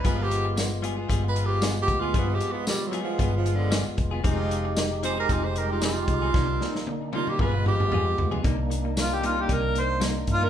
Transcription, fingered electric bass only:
X:1
M:4/4
L:1/16
Q:"Swing 16ths" 1/4=114
K:Cm
V:1 name="Fingered electric bass" clef=bass
G,,,8 G,,,6 D,,2 | G,,2 z6 G,,,4- G,,, z F,,,2 | F,,,8 F,,,6 C,,2 | C,,2 z6 G,,,4 F,,2 D,,2 |
C,,8 C,,6 G,,2 |]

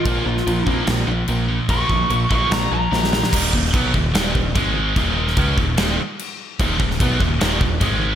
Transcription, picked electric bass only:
X:1
M:4/4
L:1/8
Q:1/4=147
K:Bbm
V:1 name="Picked electric bass" clef=bass
B,,, B,,, B,,, B,,, B,,, B,,, B,,,2 | B,,, B,,, B,,, B,,, B,,, B,,, B,,,2 | [K:Ebm] E,,, E,,, C,, E,,, E,,, E,,, A,,,2 | E,,,2 D,, E,,, E,,, z3 |
E,,, E,,, C,, E,,, E,,, E,,, A,,,2 |]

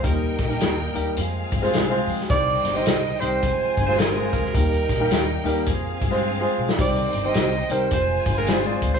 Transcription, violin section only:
X:1
M:4/4
L:1/8
Q:"Swing" 1/4=107
K:Fdor
V:1 name="Violin section"
[EBg]4 [CAf]4 | [Ecg]4 [Fca]4 | [EBg]4 [CAf]4 | [Ecg]4 [Fca]4 |]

